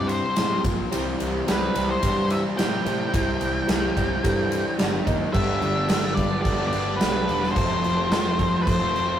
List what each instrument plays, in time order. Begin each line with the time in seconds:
Already playing: picked electric bass G2, overdriven electric guitar C3 G3 C4 E4 G4, reed electric piano C4 E4 G4, lead electric guitar D5
0.07 lead electric guitar C5, ride
0.36 picked electric bass A2, overdriven electric guitar C3 G3 C4 E4 G4, reed electric piano C4 E4 G4, snare, ride
0.63 picked electric bass A#1, overdriven electric guitar A#2 F3 A#3 F4, reed electric piano A#3 F4 A#4, kick, ride
0.90 overdriven electric guitar C3 E3 G3 C4 E4 C5, reed electric piano E4 G4 C5, ride
0.94 picked electric bass C2
1.20 picked electric bass C2, ride
1.46 picked electric bass C2, overdriven electric guitar C3 E3 G3 C4 E4 C5, reed electric piano E4 G4 D5, snare, ride
1.51 lead electric guitar B4
1.73 picked electric bass C2, overdriven electric guitar C3 E3 G3 C4 E4 C5, ride
1.90 lead electric guitar C5
2.00 picked electric bass G2, overdriven electric guitar C3 E3 G3 C4 E4 C5, reed electric piano E4 G4 C5, kick, ride
2.30 lead electric guitar E5, ride
2.57 picked electric bass A2, overdriven electric guitar C3 E3 G3 C4 E4 C5, reed electric piano E4 G4 C5, lead electric guitar G5, snare, ride
2.84 picked electric bass A2, overdriven electric guitar C3 E3 G3 C4 E4 C5, ride
3.12 picked electric bass C2, overdriven electric guitar C3 E3 G3 C4 E4 C5, reed electric piano E4 G4 C5, kick, ride
3.41 picked electric bass C2, ride
3.66 picked electric bass C2, overdriven electric guitar C3 E3 G3 C4 E4, reed electric piano E4 G4 C5, snare, ride
3.70 overdriven electric guitar C5
3.96 picked electric bass C2, overdriven electric guitar C3 E3 G3 C4 E4 C5, kick, ride
4.23 picked electric bass G2, overdriven electric guitar C3 E3 G3 C4 E4 C5, reed electric piano E4 G4 A4, kick, ride
4.52 ride
4.77 picked electric bass G1, overdriven electric guitar G2 D3 G3 D4 G4 D5, reed electric piano D4 G4 D5, snare, ride
5.04 picked electric bass D#2, overdriven electric guitar D#3 A#3 D#4 A#4, tonewheel organ C4 D4, reed electric piano D#4 A#4 D#5, kick, ride
5.08 tonewheel organ E4 F4
5.14 tonewheel organ G4 A4
5.20 tonewheel organ B4 C5
5.26 tonewheel organ D5 E5
5.31 picked electric bass G1, overdriven electric guitar G2 D3 G3, tonewheel organ A3 D4 G4 B4 F5, reed electric piano G4 A4 B4, lead electric guitar E5, kick, crash
5.35 overdriven electric guitar B3 D4 G4
5.46 overdriven electric guitar G3 B3 D4
5.60 picked electric bass G1, overdriven electric guitar D3 G3 B3 D4 G4, crash
5.76 overdriven electric guitar G3 B3 D4 G4
5.88 picked electric bass G1, overdriven electric guitar G2 D3 G3 B3 D4 G4, reed electric piano G4 A4 B4, snare, tambourine, crash
6.01 overdriven electric guitar G3 B3 D4, muted overdriven electric guitar stroke
6.14 overdriven electric guitar G3 B3 D4, lead electric guitar D5, muted overdriven electric guitar stroke, kick, crash
6.18 overdriven electric guitar G4
6.30 overdriven electric guitar G3 B3 D4, muted overdriven electric guitar stroke
6.41 reed electric piano G4 A4 D5, lead electric guitar D5, kick, crash
6.46 picked electric bass G1
6.59 overdriven electric guitar G3 B3 D4 G4
6.67 lead electric guitar D5
6.73 picked electric bass G1, crash
6.96 overdriven electric guitar G2 D3 G3 B3 D4 G4, reed electric piano G4 A4, lead electric guitar B4
7.01 picked electric bass B1, reed electric piano B4, snare, tambourine, crash
7.14 overdriven electric guitar G3 B3 D4
7.25 picked electric bass E1, overdriven electric guitar D3 G3 B3 D4 G4, crash
7.41 overdriven electric guitar G3 B3 D4 G4, snare
7.52 overdriven electric guitar F2 C3 F3 C4 F4, reed electric piano F4 A4 C5, lead electric guitar C5
7.56 picked electric bass F1, overdriven electric guitar A3 A4, tonewheel organ A3 C4 F4 C5, kick, crash
7.70 overdriven electric guitar F3 A3 C4
7.82 overdriven electric guitar C3 F3 A3 C4 F4 A4, crash
7.87 picked electric bass F1
7.97 overdriven electric guitar C4 F4 A4
8.10 overdriven electric guitar F2 C3 F3 A3 C4 F4 A4, reed electric piano F4 A4 C5, snare, tambourine, crash
8.15 picked electric bass F1
8.26 overdriven electric guitar F3 A3 C4, muted overdriven electric guitar stroke
8.38 overdriven electric guitar F3 C4 F4 A4, muted overdriven electric guitar stroke, kick, crash
8.53 overdriven electric guitar F3 A3 C4, muted overdriven electric guitar stroke
8.62 reed electric piano F4, lead electric guitar C5
8.67 picked electric bass F1, reed electric piano A4 C5, kick, crash
8.80 overdriven electric guitar A3 C4 F4 A4
8.84 overdriven electric guitar F3
8.96 picked electric bass F1, crash